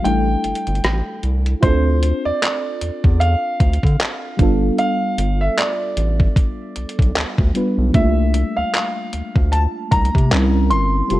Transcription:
0.02 0.36 A1 loud
0.02 1.58 G3 medium
0.02 1.59 A3 medium
0.02 1.60 D4 medium
0.02 1.19 G5 medium
0.02 closed hi-hat medium
0.07 1.60 E4 medium
0.07 1.61 A4 medium
0.44 0.54 G1 soft
0.44 closed hi-hat medium
0.55 closed hi-hat medium
0.67 0.81 G1 medium
0.67 closed hi-hat soft
0.75 closed hi-hat soft
0.84 1.02 A1 loud
0.84 cross-stick loud
0.84 closed hi-hat medium
1.23 1.55 C2 medium
1.23 closed hi-hat soft
1.46 closed hi-hat soft
1.61 2.12 D2 loud
1.61 4.35 C4 medium
1.61 4.35 D4 medium
1.61 4.34 F4 medium
1.61 2.21 C5 medium
1.61 kick loud
1.61 closed hi-hat medium
1.66 4.37 A4 medium
2.02 closed hi-hat medium
2.25 2.32 E2 medium
2.25 3.23 D5 loud
2.42 clap loud
2.42 closed hi-hat medium
2.81 2.91 E2 soft
2.81 closed hi-hat medium
3.04 3.35 E2 loud
3.04 kick medium
3.20 4.77 F5 loud
3.20 closed hi-hat medium
3.60 3.78 D2 loud
3.60 kick loud
3.60 closed hi-hat medium
3.73 closed hi-hat medium
3.83 3.96 D3 loud
3.83 kick medium
3.83 closed hi-hat soft
4.00 clap loud
4.00 closed hi-hat medium
4.37 4.71 G1 loud
4.37 7.50 G3 medium
4.37 7.51 B3 medium
4.37 7.51 D4 medium
4.37 kick loud
4.37 closed hi-hat medium
4.41 7.52 F4 medium
4.41 7.53 A4 medium
4.78 5.43 F5 loud
4.78 closed hi-hat medium
5.18 5.50 G1 loud
5.18 closed hi-hat medium
5.41 5.58 E5 medium
5.58 7.12 D5 medium
5.58 clap loud
5.58 closed hi-hat medium
5.97 6.29 A1 loud
5.97 closed hi-hat medium
6.20 kick medium
6.36 kick loud
6.36 closed hi-hat medium
6.76 6.86 B1 soft
6.76 closed hi-hat medium
6.89 closed hi-hat medium
6.99 7.12 B1 loud
6.99 kick medium
6.99 closed hi-hat soft
7.16 7.25 D2 soft
7.16 clap loud
7.16 closed hi-hat medium
7.38 7.52 D2 medium
7.38 kick loud
7.54 7.91 G3 medium
7.54 7.94 B3 medium
7.54 7.94 D4 medium
7.54 7.95 F4 medium
7.54 7.95 B4 medium
7.54 closed hi-hat medium
7.78 7.91 B1 medium
7.92 8.44 C2 loud
7.92 10.26 G3 medium
7.92 10.27 A#3 medium
7.92 10.27 D4 medium
7.92 8.59 E5 medium
7.92 kick loud
7.92 closed hi-hat medium
7.96 10.29 A3 medium
7.96 10.28 F4 medium
8.34 closed hi-hat medium
8.57 8.64 D2 medium
8.57 9.55 F5 medium
8.74 clap loud
8.74 closed hi-hat medium
9.13 9.23 D2 soft
9.13 closed hi-hat medium
9.36 9.67 D2 medium
9.36 kick medium
9.52 9.61 A5 loud
9.52 closed hi-hat medium
9.91 10.10 C2 loud
9.91 10.73 A#5 loud
9.91 kick medium
9.91 closed hi-hat medium
10.05 closed hi-hat medium
10.15 10.34 C3 loud
10.15 kick medium
10.15 closed hi-hat soft
10.30 10.73 C2 loud
10.30 11.07 G3 medium
10.30 11.08 C4 medium
10.30 11.10 C#4 medium
10.30 10.39 D#4 soft
10.30 11.11 A#4 medium
10.30 clap loud
10.30 closed hi-hat medium
10.39 11.14 E4 medium
10.70 11.02 G1 loud
10.70 11.20 C6 loud
10.70 closed hi-hat medium
11.08 11.20 F1 loud
11.08 11.20 G3 medium
11.08 11.20 C4 medium
11.08 11.20 G4 medium
11.08 closed hi-hat medium
11.12 11.20 F4 medium
11.12 11.20 A4 medium

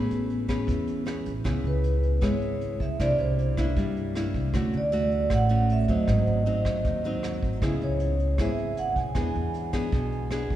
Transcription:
0.00 0.67 A3 medium
0.00 1.06 B3 medium
0.00 0.46 C#4 soft
0.00 0.46 G#4 medium
0.00 0.46 B4 medium
0.10 0.65 A1 medium
0.10 closed hi-hat soft
0.30 closed hi-hat soft
0.48 1.04 C#4 medium
0.48 1.04 G#4 medium
0.48 1.04 B4 medium
0.48 kick medium
0.48 cross-stick medium
0.48 closed hi-hat soft
0.67 1.22 E2 medium
0.67 1.43 E3 medium
0.67 kick medium
0.67 closed hi-hat medium
0.87 closed hi-hat soft
1.06 1.31 C#4 soft
1.06 1.32 G#4 medium
1.06 1.32 B4 medium
1.06 cross-stick medium
1.06 closed hi-hat soft
1.26 1.44 A1 medium
1.26 closed hi-hat soft
1.44 1.63 C#2 medium
1.44 2.20 C#3 medium
1.44 2.19 B3 medium
1.44 2.19 E4 medium
1.44 2.20 G#4 medium
1.44 kick medium
1.44 cross-stick medium
1.44 closed hi-hat soft
1.64 2.18 C#2 medium
1.64 2.20 B4 medium
1.64 closed hi-hat soft
1.84 closed hi-hat soft
2.03 closed hi-hat soft
2.21 2.77 G#1 medium
2.21 2.97 G#3 medium
2.21 2.96 B3 medium
2.21 2.96 E4 medium
2.21 2.97 G#4 medium
2.21 2.77 C#5 medium
2.21 kick medium
2.21 cross-stick medium
2.21 closed hi-hat soft
2.41 closed hi-hat soft
2.61 closed hi-hat soft
2.80 2.98 C#2 medium
2.80 3.01 E5 medium
2.80 kick medium
2.80 closed hi-hat soft
3.00 3.18 C2 medium
3.00 3.75 C3 medium
3.00 3.55 A#3 medium
3.00 3.55 D4 medium
3.00 3.55 E4 medium
3.00 3.18 D5 loud
3.00 kick medium
3.00 cross-stick soft
3.00 closed hi-hat soft
3.18 3.73 C2 medium
3.18 3.56 C5 medium
3.18 closed hi-hat soft
3.39 closed hi-hat soft
3.57 4.12 A#3 medium
3.57 4.13 D4 medium
3.57 4.13 E4 medium
3.57 kick medium
3.57 cross-stick medium
3.57 closed hi-hat soft
3.77 4.31 G2 medium
3.77 4.52 G3 medium
3.77 kick medium
3.77 closed hi-hat soft
3.96 closed hi-hat soft
4.15 4.51 A#3 soft
4.15 4.51 D4 soft
4.15 4.52 E4 medium
4.15 cross-stick medium
4.15 closed hi-hat soft
4.34 4.52 C2 medium
4.34 kick soft
4.34 closed hi-hat soft
4.53 4.72 D2 medium
4.53 5.29 D3 medium
4.53 4.79 A3 medium
4.53 4.79 C#4 medium
4.53 4.79 F#4 medium
4.53 kick medium
4.53 cross-stick medium
4.53 closed hi-hat soft
4.73 5.27 D2 medium
4.73 closed hi-hat soft
4.77 5.35 D5 medium
4.92 5.47 A3 medium
4.92 5.48 F#4 medium
4.92 closed hi-hat soft
5.11 closed hi-hat soft
5.30 5.85 A1 medium
5.30 6.06 A2 medium
5.30 5.68 F#5 loud
5.30 kick medium
5.30 cross-stick medium
5.30 closed hi-hat soft
5.49 5.85 A3 medium
5.49 5.86 C#4 medium
5.49 5.86 F#4 medium
5.49 closed hi-hat soft
5.69 5.91 E5 loud
5.69 closed hi-hat soft
5.88 6.07 D2 medium
5.88 6.44 F#3 medium
5.88 6.44 C4 medium
5.88 6.44 D#4 medium
5.88 7.02 D#5 medium
5.88 kick soft
5.88 closed hi-hat soft
6.08 6.26 G#1 loud
6.08 6.83 G#2 medium
6.08 kick medium
6.08 cross-stick medium
6.08 closed hi-hat soft
6.27 6.81 G#1 medium
6.27 closed hi-hat soft
6.46 7.01 F#3 medium
6.46 7.01 C4 medium
6.46 7.02 D#4 medium
6.46 closed hi-hat soft
6.65 kick medium
6.65 cross-stick medium
6.65 closed hi-hat soft
6.84 7.39 D#2 medium
6.84 7.60 D#3 medium
6.84 kick medium
6.84 closed hi-hat soft
7.04 7.59 F#3 medium
7.04 7.60 C4 medium
7.04 7.60 D#4 medium
7.04 closed hi-hat soft
7.23 cross-stick medium
7.23 closed hi-hat soft
7.43 7.61 G#1 medium
7.43 kick medium
7.43 closed hi-hat soft
7.62 7.80 C#2 medium
7.62 8.37 C#3 medium
7.62 8.14 B3 medium
7.62 8.14 E4 medium
7.62 8.14 G#4 medium
7.62 kick medium
7.62 cross-stick medium
7.62 closed hi-hat soft
7.81 8.36 C#2 medium
7.81 8.42 C#5 medium
7.81 closed hi-hat soft
8.00 closed hi-hat soft
8.19 closed hi-hat soft
8.38 8.92 G#1 medium
8.38 9.14 G#2 medium
8.38 9.13 B3 medium
8.38 9.13 E4 medium
8.38 9.14 G#4 medium
8.38 8.80 E5 medium
8.38 kick medium
8.38 cross-stick medium
8.38 closed hi-hat soft
8.58 closed hi-hat soft
8.77 8.98 F#5 loud
8.77 closed hi-hat soft
8.95 9.15 B1 medium
8.95 10.09 G#5 medium
8.95 kick soft
8.95 closed hi-hat soft
9.15 9.34 E2 medium
9.15 9.91 E3 medium
9.15 9.71 B3 medium
9.15 9.71 D4 medium
9.15 9.71 G#4 medium
9.15 kick medium
9.15 cross-stick medium
9.15 closed hi-hat soft
9.35 9.89 E2 medium
9.35 closed hi-hat soft
9.54 closed hi-hat soft
9.73 10.28 B3 medium
9.73 10.28 D4 medium
9.73 10.28 G#4 medium
9.73 kick medium
9.73 cross-stick medium
9.73 closed hi-hat soft
9.92 10.47 B1 medium
9.92 10.56 B2 medium
9.92 kick medium
9.92 closed hi-hat soft
10.12 closed hi-hat soft
10.31 10.56 B3 medium
10.31 10.56 D4 medium
10.31 10.56 G#4 medium
10.31 cross-stick medium
10.31 closed hi-hat soft
10.50 10.56 B1 medium
10.50 kick medium
10.50 closed hi-hat soft

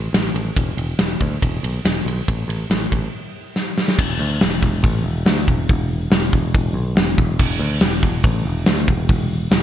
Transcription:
0.13 0.28 A1 medium
0.13 snare loud
0.13 ride medium
0.34 0.50 A1 medium
0.34 ride medium
0.56 0.72 E1 medium
0.56 kick loud
0.56 ride medium
0.77 0.93 E1 loud
0.77 ride medium
0.99 1.14 E1 medium
0.99 snare loud
0.99 ride medium
1.21 1.36 D2 medium
1.21 kick medium
1.21 ride medium
1.42 1.57 E1 loud
1.42 kick loud
1.42 ride medium
1.63 1.78 B1 medium
1.63 ride medium
1.85 2.00 E1 medium
1.85 snare loud
1.85 ride loud
2.05 2.21 B1 medium
2.05 ride medium
2.28 2.43 A1 medium
2.28 kick loud
2.28 ride loud
2.48 2.63 A1 medium
2.48 ride medium
2.70 2.85 A1 medium
2.70 snare loud
2.70 ride medium
2.92 3.07 A1 medium
2.92 kick medium
2.92 ride medium
3.56 snare medium
3.78 snare medium
3.88 snare medium
3.98 4.17 E1 medium
3.98 kick loud
3.98 crash loud
4.19 4.38 D2 loud
4.41 4.60 E1 loud
4.41 snare loud
4.41 open hi-hat medium
4.62 4.81 E1 medium
4.62 kick medium
4.83 5.02 A1 loud
4.83 kick loud
4.83 open hi-hat medium
5.04 5.23 E1 medium
5.26 5.45 D2 medium
5.26 snare loud
5.26 open hi-hat medium
5.48 5.66 E1 medium
5.48 kick medium
5.69 6.06 E1 medium
5.69 kick loud
5.69 open hi-hat medium
6.10 6.29 E1 medium
6.10 snare loud
6.10 open hi-hat medium
6.33 6.52 E1 medium
6.33 kick medium
6.54 6.73 E1 medium
6.54 kick loud
6.54 open hi-hat medium
6.74 6.93 B1 loud
6.96 7.15 E1 loud
6.96 snare loud
6.96 open hi-hat medium
7.18 7.36 E1 medium
7.18 kick medium
7.39 7.58 E1 medium
7.39 kick loud
7.39 crash loud
7.59 7.78 D2 loud
7.81 8.00 E1 loud
7.81 snare loud
7.81 open hi-hat medium
8.03 8.21 E1 loud
8.03 kick medium
8.23 8.42 A1 loud
8.23 kick loud
8.23 open hi-hat medium
8.45 8.64 E1 medium
8.66 8.85 D2 medium
8.66 snare loud
8.66 open hi-hat medium
8.88 9.07 E1 medium
8.88 kick medium
9.09 9.46 E1 loud
9.09 kick loud
9.09 open hi-hat medium
9.51 9.63 E1 medium
9.51 snare loud
9.51 open hi-hat medium

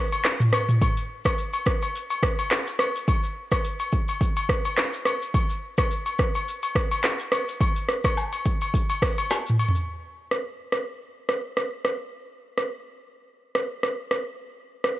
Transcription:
0.12 high agogo medium
0.12 shaker soft
0.24 cross-stick medium
0.24 clap medium
0.24 shaker medium
0.40 mid tom medium
0.40 shaker medium
0.53 cross-stick loud
0.53 high agogo medium
0.53 shaker medium
0.69 mid tom loud
0.69 shaker medium
0.81 kick loud
0.81 high agogo medium
0.81 shaker medium
0.97 shaker medium
1.25 kick medium
1.25 cross-stick loud
1.25 high agogo medium
1.25 shaker soft
1.38 shaker medium
1.53 high agogo medium
1.53 shaker medium
1.66 kick medium
1.66 cross-stick loud
1.66 shaker medium
1.82 high agogo medium
1.82 shaker soft
1.95 shaker medium
2.10 high agogo medium
2.10 shaker medium
2.23 kick medium
2.23 cross-stick loud
2.38 high agogo medium
2.38 shaker soft
2.51 cross-stick medium
2.51 clap medium
2.51 shaker medium
2.67 shaker medium
2.79 cross-stick loud
2.79 high agogo medium
2.79 shaker medium
2.96 shaker medium
3.08 kick loud
3.08 high agogo medium
3.08 shaker medium
3.23 shaker medium
3.51 kick loud
3.51 cross-stick medium
3.51 high agogo medium
3.51 shaker medium
3.64 shaker medium
3.80 high agogo medium
3.80 shaker medium
3.92 kick medium
3.92 shaker medium
4.08 high agogo medium
4.08 shaker medium
4.21 kick loud
4.21 shaker medium
4.36 high agogo medium
4.36 shaker medium
4.49 kick medium
4.49 cross-stick loud
4.65 high agogo medium
4.65 shaker soft
4.77 cross-stick medium
4.77 clap medium
4.77 shaker medium
4.93 shaker medium
5.05 cross-stick medium
5.05 high agogo medium
5.05 shaker medium
5.22 shaker medium
5.34 kick loud
5.34 high agogo medium
5.34 shaker medium
5.50 shaker medium
5.78 kick loud
5.78 cross-stick medium
5.78 high agogo medium
5.78 shaker soft
5.91 shaker medium
6.06 high agogo medium
6.06 shaker medium
6.19 kick medium
6.19 cross-stick medium
6.19 shaker soft
6.35 high agogo medium
6.35 shaker medium
6.48 shaker medium
6.63 high agogo medium
6.63 shaker medium
6.75 kick medium
6.75 cross-stick loud
6.91 high agogo medium
6.91 shaker soft
7.04 cross-stick medium
7.04 clap medium
7.04 shaker medium
7.20 shaker medium
7.32 cross-stick loud
7.32 high agogo medium
7.32 shaker medium
7.48 shaker medium
7.61 kick loud
7.61 high agogo medium
7.61 shaker medium
7.76 shaker medium
7.89 cross-stick medium
7.89 shaker soft
8.04 kick medium
8.04 cross-stick medium
8.04 high agogo medium
8.04 shaker soft
8.17 low woodblock medium
8.17 shaker medium
8.32 high agogo medium
8.32 shaker medium
8.45 kick medium
8.45 shaker medium
8.61 high agogo medium
8.61 shaker medium
8.74 kick medium
8.74 shaker medium
8.89 high agogo medium
8.89 shaker medium
9.02 kick medium
9.02 cross-stick loud
9.02 open hi-hat medium
9.02 shaker medium
9.18 high agogo medium
9.18 shaker soft
9.30 snare medium
9.30 low woodblock medium
9.30 shaker medium
9.46 mid tom medium
9.46 shaker medium
9.59 high agogo medium
9.59 shaker medium
9.68 floor tom loud
9.75 shaker medium
10.31 cross-stick medium
10.72 cross-stick medium
11.29 cross-stick medium
11.57 cross-stick medium
11.85 cross-stick medium
12.58 cross-stick medium
13.55 cross-stick medium
13.83 cross-stick medium
14.11 cross-stick medium
14.84 cross-stick medium

